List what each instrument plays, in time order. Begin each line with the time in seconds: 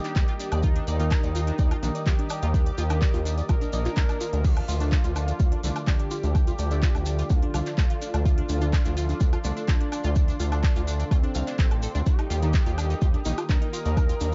Already playing: synth stab D#3 A#3 D#4, analog synth lead G4, ambient pad G4 A#4 D#5 A#5, analog synth pad A#4 D#5 G5 D#6
0.04 synth arpeggio sound D4, clap, closed hi-hat, maracas
0.16 analog synth bass D#2, synth arpeggio sound D5, kick, clap, closed hi-hat, maracas
0.28 synth arpeggio sound F4, closed hi-hat
0.40 synth arpeggio sound D4, open hi-hat, maracas
0.52 analog synth bass D#2, synth arpeggio sound D5, closed hi-hat, low woodblock, maracas
0.63 analog synth lead D#4, synth arpeggio sound F4, kick, closed hi-hat, maracas
0.76 synth arpeggio sound D4, closed hi-hat
0.87 analog synth bass D#2, synth arpeggio sound D5, open hi-hat, maracas
1.00 synth stab D#3 A#3 D#4, synth arpeggio sound F4, closed hi-hat, maracas
1.11 synth arpeggio sound D4, kick, clap, closed hi-hat, low woodblock, maracas
1.23 analog synth bass D#2, synth arpeggio sound D5, closed hi-hat, maracas
1.35 synth arpeggio sound F4, open hi-hat, maracas
1.47 synth arpeggio sound D4, closed hi-hat, maracas
1.59 analog synth bass D#2, synth arpeggio sound D5, kick, closed hi-hat, maracas
1.71 synth arpeggio sound F4, closed hi-hat, low woodblock
1.83 analog synth bass A#1, synth stab D#3 A#3 D#4, synth arpeggio sound D4, open hi-hat, maracas
1.95 synth arpeggio sound D5, closed hi-hat, maracas
2.06 analog synth bass D#2, synth arpeggio sound F4, analog synth lead G4, kick, clap, closed hi-hat, maracas
2.19 synth arpeggio sound D4, closed hi-hat
2.30 synth arpeggio sound D5, open hi-hat, low woodblock, maracas
2.42 analog synth bass D#2, synth arpeggio sound F4, closed hi-hat, maracas
2.54 synth arpeggio sound D4, kick, closed hi-hat, maracas
2.66 synth arpeggio sound D5, closed hi-hat
2.78 analog synth bass D#2, synth arpeggio sound F4, open hi-hat, maracas
2.90 synth stab D#3 A#3 D#4, synth arpeggio sound D4, closed hi-hat, low woodblock, maracas
3.02 synth arpeggio sound D5, kick, clap, closed hi-hat, maracas
3.14 analog synth bass D#2, synth arpeggio sound F4, open hi-hat, maracas
3.25 synth arpeggio sound D4, open hi-hat, maracas
3.38 synth arpeggio sound D5, closed hi-hat, maracas
3.49 analog synth bass A#1, synth arpeggio sound F4, analog synth lead A#4, kick, closed hi-hat, swell, low woodblock, maracas
3.61 synth arpeggio sound D4, closed hi-hat, maracas
3.73 analog synth bass A#1, synth stab D#3 A#3 D#4, synth arpeggio sound D5, open hi-hat, maracas
3.85 synth arpeggio sound F4, clap, closed hi-hat, maracas
3.96 analog synth bass D#2, synth arpeggio sound D4, kick, clap, closed hi-hat, maracas
4.09 synth arpeggio sound D5, closed hi-hat, low woodblock, maracas
4.21 synth arpeggio sound F4, open hi-hat, maracas
4.33 analog synth bass D2, synth arpeggio sound D4, closed hi-hat, maracas
4.44 synth arpeggio sound D4, analog synth lead F4, ambient pad F4, analog synth pad A4 D5 F5 D6, kick, closed hi-hat, crash, maracas
4.57 synth arpeggio sound D4, closed hi-hat, low woodblock
4.64 synth arpeggio sound F4, ambient pad A4, open hi-hat
4.68 analog synth bass D2, maracas
4.76 ambient pad D5
4.80 synth stab D3 A3 D4, synth arpeggio sound D4, closed hi-hat, maracas
4.92 synth arpeggio sound D4, kick, clap, closed hi-hat, maracas
5.04 analog synth bass D2, synth arpeggio sound F4, closed hi-hat, maracas
5.11 ambient pad A5
5.16 synth arpeggio sound D4, open hi-hat, low woodblock, maracas
5.28 synth arpeggio sound D4, closed hi-hat, maracas
5.40 analog synth bass D2, synth arpeggio sound F4, kick, closed hi-hat, maracas
5.52 synth arpeggio sound D4, closed hi-hat
5.63 analog synth bass C2, synth stab D3 A3 D4, synth arpeggio sound D4, open hi-hat, maracas
5.76 synth arpeggio sound F4, closed hi-hat, low woodblock, maracas
5.87 analog synth bass D2, synth arpeggio sound D4, analog synth lead G4, kick, clap, closed hi-hat, maracas
6.00 synth arpeggio sound D4, closed hi-hat
6.11 synth arpeggio sound F4, open hi-hat, maracas
6.23 analog synth bass D2, synth arpeggio sound D4, closed hi-hat, maracas
6.35 synth arpeggio sound D4, kick, closed hi-hat, low woodblock, maracas
6.47 synth arpeggio sound F4, closed hi-hat, maracas
6.59 analog synth bass D2, synth arpeggio sound D4, open hi-hat, maracas
6.71 synth stab D3 A3 D4, synth arpeggio sound D4, closed hi-hat, maracas
6.83 synth arpeggio sound F4, kick, clap, closed hi-hat, maracas
6.95 analog synth bass D2, synth arpeggio sound D4, open hi-hat, low woodblock, maracas
7.06 synth arpeggio sound D4, open hi-hat, maracas
7.19 synth arpeggio sound F4, closed hi-hat, maracas
7.30 analog synth bass D2, synth arpeggio sound D4, analog synth lead F4, kick, closed hi-hat, maracas
7.43 synth arpeggio sound D4, closed hi-hat
7.54 analog synth bass C2, synth stab D3 A3 D4, synth arpeggio sound F4, open hi-hat, low woodblock, maracas
7.66 synth arpeggio sound D4, clap, closed hi-hat, maracas
7.78 analog synth bass D2, synth arpeggio sound D4, kick, clap, closed hi-hat, maracas
7.90 synth arpeggio sound F4, closed hi-hat
8.02 synth arpeggio sound D4, open hi-hat, maracas
8.14 analog synth bass D2, synth arpeggio sound D4, closed hi-hat, low woodblock, maracas
8.25 analog synth lead F4, synth arpeggio sound F4, analog synth pad C6, kick, closed hi-hat, maracas
8.38 synth arpeggio sound D4, closed hi-hat
8.49 analog synth bass D2, synth arpeggio sound D4, open hi-hat, maracas
8.61 synth stab D3 A3 D4, synth arpeggio sound F4, closed hi-hat, maracas
8.73 synth arpeggio sound D4, kick, clap, closed hi-hat, low woodblock, maracas
8.85 analog synth bass D2, synth arpeggio sound D4, closed hi-hat, maracas
8.97 synth arpeggio sound F4, open hi-hat, maracas
9.09 synth arpeggio sound D4, closed hi-hat, maracas
9.20 analog synth bass D2, synth arpeggio sound D4, kick, closed hi-hat, maracas
9.33 synth arpeggio sound F4, closed hi-hat, low woodblock
9.44 analog synth bass C2, synth stab D3 A3 D4, synth arpeggio sound D4, open hi-hat, maracas
9.57 synth arpeggio sound D4, closed hi-hat, maracas
9.68 analog synth bass D2, analog synth lead D4, synth arpeggio sound F4, kick, clap, closed hi-hat, maracas
9.81 synth arpeggio sound D4, closed hi-hat
9.92 synth arpeggio sound D4, open hi-hat, low woodblock, maracas
10.04 analog synth bass D2, synth arpeggio sound F4, closed hi-hat, maracas
10.16 synth arpeggio sound D4, kick, closed hi-hat, maracas
10.28 synth arpeggio sound D4, closed hi-hat, maracas
10.40 analog synth bass D2, synth arpeggio sound F4, open hi-hat, maracas
10.52 synth stab D3 A3 D4, synth arpeggio sound D4, closed hi-hat, low woodblock, maracas
10.64 synth arpeggio sound D4, kick, clap, closed hi-hat, maracas
10.76 analog synth bass D2, synth arpeggio sound F4, open hi-hat, maracas
10.87 synth arpeggio sound D4, open hi-hat, maracas
11.00 synth arpeggio sound D4, closed hi-hat, maracas
11.11 analog synth bass D2, analog synth lead C4, synth arpeggio sound F4, kick, closed hi-hat, low woodblock, maracas
11.24 synth arpeggio sound D4, closed hi-hat
11.35 analog synth bass C2, synth stab D3 A3 D4, synth arpeggio sound F5, open hi-hat, maracas
11.47 synth arpeggio sound D4, clap, closed hi-hat, maracas
11.59 analog synth bass A1, synth arpeggio sound A3, kick, clap, closed hi-hat, maracas
11.71 synth arpeggio sound A4, closed hi-hat, low woodblock
11.82 synth arpeggio sound A4, open hi-hat, maracas
11.95 analog synth bass D2, synth arpeggio sound D4, closed hi-hat, maracas
12.06 synth arpeggio sound D4, analog synth lead G4, ambient pad G4, analog synth pad A#4 D#5 G5 D#6, kick, closed hi-hat, maracas
12.19 synth arpeggio sound D#4, closed hi-hat, low woodblock
12.24 ambient pad A#4
12.30 analog synth bass D#2, synth arpeggio sound F4, open hi-hat, maracas
12.42 synth stab D#3 A#3 D#4, synth arpeggio sound D4, closed hi-hat, maracas
12.53 synth arpeggio sound D#4, kick, clap, closed hi-hat, maracas
12.58 ambient pad D#5 A#5
12.66 analog synth bass D#2, synth arpeggio sound F4, closed hi-hat, maracas
12.78 synth arpeggio sound D4, open hi-hat, low woodblock, maracas
12.90 synth arpeggio sound D#4, closed hi-hat, maracas
13.01 analog synth bass D#2, synth arpeggio sound F4, kick, closed hi-hat, maracas
13.14 synth arpeggio sound D4, closed hi-hat
13.25 analog synth bass A#1, synth stab D#3 A#3 D#4, synth arpeggio sound D#4, open hi-hat, maracas
13.38 synth arpeggio sound F4, closed hi-hat, low woodblock, maracas
13.49 analog synth bass D#2, synth arpeggio sound D4, analog synth lead A#4, kick, clap, closed hi-hat, maracas
13.62 synth arpeggio sound D#4, closed hi-hat
13.73 synth arpeggio sound F4, open hi-hat, maracas
13.85 analog synth bass D#2, synth arpeggio sound D4, closed hi-hat, maracas
13.97 synth arpeggio sound D#4, kick, closed hi-hat, low woodblock, maracas
14.09 synth arpeggio sound F4, closed hi-hat, maracas
14.21 analog synth bass D#2, synth arpeggio sound D4, open hi-hat, maracas